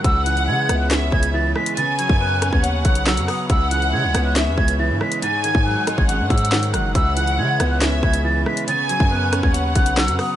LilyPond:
<<
  \new Staff \with { instrumentName = "Flute" } { \time 4/4 \key cis \minor \tempo 4 = 139 e'''8 fis'''8 gis'''8. fis'''16 r8 gis'''8 a'''8 b'''8 | a'''8 gis'''8 fis'''8. gis'''16 r8 fis'''8 e'''8 dis'''8 | e'''8 fis'''8 gis'''8. fis'''16 r8 gis'''8 a'''8 b'''8 | a'''8 gis'''8 fis'''8. gis'''16 fis'''8 e'''4 fis'''8 |
e'''8 fis'''8 gis'''8. fis'''16 r8 gis'''8 a'''8 b'''8 | a'''8 gis'''8 fis'''8. gis'''16 r8 fis'''8 e'''8 dis'''8 | }
  \new Staff \with { instrumentName = "Violin section" } { \time 4/4 \key cis \minor fis''2 e''4 r4 | gis''2 fis''2 | fis''2 e''4 r4 | gis''2 fis''2 |
fis''2 e''4 r4 | gis''2 fis''2 | }
  \new Staff \with { instrumentName = "String section" } { \time 4/4 \key cis \minor << { <cis' b' e''>1 | <b cis'' fis''>1 | <cis' e''>1 | <gis cis'' fis''>1 |
<cis' b' e''>1 | <b cis'' fis''>1 | } \\ { gis'1 | r1 | gis'1~ | gis'1~ |
gis'1 | r1 | } >> }
  \new Staff \with { instrumentName = "Grand piano" } { \clef bass \time 4/4 \key cis \minor cis8 e8 gis8 b8 cis'8 cis8 e8 gis8 | cis8 fis8 b8 cis'8 cis''8 cis8 fis8 b8 | cis8 e8 gis8 b8 cis'8 cis8 e8 gis8 | gis,8 dis8 fis8 gis8 cis'8 gis,8 dis8 fis8 |
cis8 e8 gis8 b8 cis'8 cis8 e8 gis8 | cis8 fis8 b8 cis'8 cis''8 cis8 fis8 b8 | }
  \new Staff \with { instrumentName = "808-style bass" } { \clef bass \time 4/4 \key cis \minor cis,4 cis8 cis,4 cis,4 r8 | r8. fis,4 dis,8. b,,8. fis,16 r8 | cis,4 cis16 cis,16 cis,8. e,16 cis,8. gis,16 r8 | r8. gis,8 r8 gis,,8 gis,16 gis,4 fis,,8 |
cis,4 cis8 cis,4 cis,4 r8 | r8. fis,4 dis,8. b,,8. fis,16 r8 | }
  \new DrumStaff \with { instrumentName = "Drums" } \drummode { \time 4/4 <hh bd>8 hh16 hh16 r8 <hh ss>8 <hc hh sn>8 bd16 hh16 r8 ss16 hh16 | hh8 hh16 bd16 r8 <hh ss>16 bd16 hh8 <hh bd>16 hh16 <hc sn>16 hh16 <hho ss>8 | <hh bd>8 hh16 hh16 r8 <hh ss>8 <hc hh sn>8 bd16 hh16 r8 ss16 hh16 | hh8 hh16 bd16 r8 <hh ss>16 bd16 \tuplet 3/2 { hh16 r16 r16 <hh bd>16 hh16 hh16 } <hc sn>16 hh16 <hh ss>8 |
<hh bd>8 hh16 hh16 r8 <hh ss>8 <hc hh sn>8 bd16 hh16 r8 ss16 hh16 | hh8 hh16 bd16 r8 <hh ss>16 bd16 hh8 <hh bd>16 hh16 <hc sn>16 hh16 <hho ss>8 | }
>>